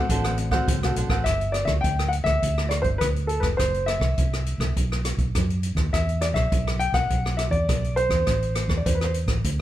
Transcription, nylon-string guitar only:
0.12 D3 A3 C4 F#4
0.53 A3 C4 F#4
0.68 A2
0.83 A3 C4 F#4

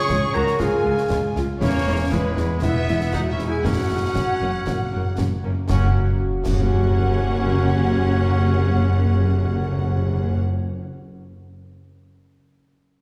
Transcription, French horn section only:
Already playing: C#5
0.35 A#4
0.60 G#4
1.62 C#4
2.12 B3
2.63 E4
3.14 F#4
3.33 E4
3.48 G#4
3.65 F#4
5.69 F#4

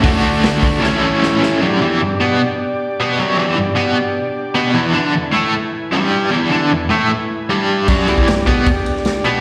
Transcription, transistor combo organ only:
0.04 F#4 A4 D5
0.81 E4 A4 C#5
1.60 D4 G4 D5
4.73 E4 B4 G#5
7.88 D4 G4 D5

